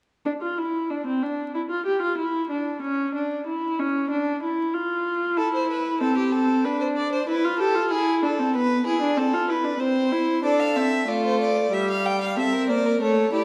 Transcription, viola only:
0.25 0.32 D4 medium
0.42 0.59 F4 medium
0.58 0.92 E4 medium
0.90 1.06 D4 medium
1.07 1.24 C4 medium
1.23 1.54 D4 medium
1.54 1.61 E4 medium
1.70 1.85 F4 medium
1.86 2.01 G4 medium
2.02 2.17 F4 medium
2.18 2.50 E4 medium
2.50 2.81 D4 medium
2.82 3.14 C#4 medium
3.15 3.46 D4 medium
3.46 3.81 E4 medium
3.79 4.10 C#4 medium
4.10 4.42 D4 medium
4.43 4.75 E4 medium
4.73 5.39 F4 medium
5.37 6.02 E4 medium
6.01 6.66 C4 medium
6.64 7.27 D4 medium
7.28 7.45 E4 medium
7.44 7.61 F4 medium
7.59 7.76 G4 medium
7.75 7.92 F4 medium
7.91 8.24 E4 medium
8.23 8.40 D4 medium
8.39 8.56 C4 medium
8.55 8.86 B3 medium
8.86 9.01 E4 medium
9.02 9.19 D4 medium
9.17 9.35 C4 medium
9.33 9.51 F4 medium
9.49 9.66 E4 medium
9.64 9.79 D4 medium
9.80 10.13 C4 medium
10.12 10.43 E4 medium
10.44 10.77 D4 medium
10.76 11.07 C4 medium
11.08 11.71 A3 medium
11.72 12.38 G3 medium
12.37 12.70 C4 medium
12.68 13.00 A#3 medium
13.01 13.32 A3 medium
13.32 13.44 E4 medium

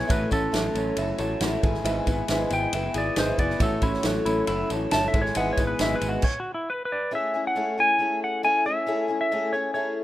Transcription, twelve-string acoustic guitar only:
0.07 0.31 A3 medium
0.07 0.31 E4 medium
0.07 0.30 F#4 medium
0.07 0.29 C#5 medium
0.30 0.52 E4 soft
0.30 0.52 F#4 soft
0.30 0.53 C#5 medium
0.52 0.96 A3 medium
0.52 0.98 E4 medium
0.52 0.98 F#4 medium
0.52 0.98 C#5 medium
0.98 1.20 A3 medium
0.98 1.20 E4 medium
0.98 1.19 F#4 medium
0.98 1.18 C#5 medium
1.19 1.40 E4 medium
1.19 1.40 F#4 medium
1.19 1.41 C#5 medium
1.40 1.63 A3 medium
1.40 1.62 E4 medium
1.40 1.63 F#4 medium
1.40 1.62 C#5 medium
1.62 1.84 B3 soft
1.62 1.83 E4 medium
1.62 1.84 G#4 medium
1.62 1.85 B4 medium
1.84 2.07 G#2 medium
1.84 2.08 E3 medium
1.84 2.07 B3 medium
1.84 2.06 E4 medium
1.84 2.06 G#4 medium
1.84 2.05 B4 medium
2.06 2.29 B3 medium
2.06 2.29 E4 medium
2.06 2.29 G#4 medium
2.06 2.29 B4 medium
2.29 2.73 G#2 medium
2.29 3.17 E3 medium
2.29 2.72 B3 medium
2.29 2.74 E4 medium
2.29 2.73 G#4 medium
2.29 2.74 B4 medium
2.74 2.95 B3 medium
2.74 2.94 E4 medium
2.74 2.93 G#4 medium
2.74 2.93 B4 medium
2.94 3.17 B3 soft
2.94 3.17 E4 soft
2.94 3.17 G#4 medium
2.94 3.17 B4 soft
3.16 3.39 G#2 medium
3.16 3.39 E3 medium
3.16 3.38 B3 medium
3.16 3.38 E4 medium
3.16 3.37 G#4 medium
3.16 3.37 B4 medium
3.38 3.59 B3 soft
3.38 3.59 E4 medium
3.38 3.60 G#4 soft
3.38 3.60 B4 medium
3.60 3.82 A3 medium
3.60 3.83 E4 medium
3.60 3.81 F#4 medium
3.60 3.81 C#5 medium
3.82 4.04 E4 soft
3.82 4.05 F#4 soft
3.82 4.04 C#5 medium
4.05 4.47 A3 medium
4.05 4.48 E4 medium
4.05 4.48 F#4 medium
4.05 4.48 C#5 medium
4.48 4.70 A3 medium
4.48 4.70 E4 medium
4.48 4.71 F#4 medium
4.48 4.71 C#5 medium
4.72 4.92 E4 soft
4.72 4.94 F#4 soft
4.72 4.93 C#5 medium
4.94 5.15 A3 medium
4.94 5.15 E4 medium
4.94 5.15 F#4 medium
4.94 5.15 C#5 medium
5.15 5.36 B3 soft
5.15 5.36 E4 medium
5.15 5.36 G#4 medium
5.15 5.37 B4 medium
5.36 5.58 G#2 medium
5.36 5.59 E3 medium
5.36 5.59 B3 medium
5.36 5.59 E4 medium
5.36 5.58 G#4 medium
5.36 5.58 B4 medium
5.59 5.79 B3 soft
5.59 5.79 E4 soft
5.59 5.80 G#4 soft
5.59 5.79 B4 medium
5.80 6.24 G#2 medium
5.80 6.24 E3 medium
5.80 6.24 B3 medium
5.80 6.24 E4 medium
5.80 6.24 G#4 medium
5.80 6.24 B4 medium
7.11 7.33 A3 medium
7.11 7.33 C#4 medium
7.11 7.34 E4 medium
7.11 7.33 G#4 medium
7.34 7.55 C#4 soft
7.34 7.56 E4 soft
7.34 7.55 G#4 medium
7.55 7.77 A3 medium
7.55 7.77 C#4 medium
7.55 7.77 E4 medium
7.55 7.76 G#4 medium
7.77 7.99 C#4 soft
7.77 7.99 E4 soft
7.77 7.99 G#4 medium
7.99 8.42 A3 medium
7.99 8.43 C#4 medium
7.99 8.44 E4 medium
7.99 8.45 G#4 medium
8.43 8.65 A3 medium
8.43 8.65 C#4 medium
8.43 8.65 E4 medium
8.43 8.64 G#4 medium
8.65 8.86 C#4 medium
8.65 8.87 E4 medium
8.65 8.87 G#4 medium
8.87 9.08 A3 medium
8.87 9.08 C#4 medium
8.87 9.08 E4 medium
8.87 9.07 G#4 loud
9.08 9.31 C#4 soft
9.08 9.31 E4 medium
9.08 9.30 G#4 medium
9.32 9.52 A3 medium
9.32 9.53 C#4 medium
9.32 9.53 E4 medium
9.32 9.52 G#4 loud
9.53 9.74 C#4 soft
9.53 9.74 E4 medium
9.53 9.74 G#4 medium
9.74 10.04 A3 medium
9.74 10.04 C#4 medium
9.74 10.04 E4 medium
9.74 10.04 G#4 medium

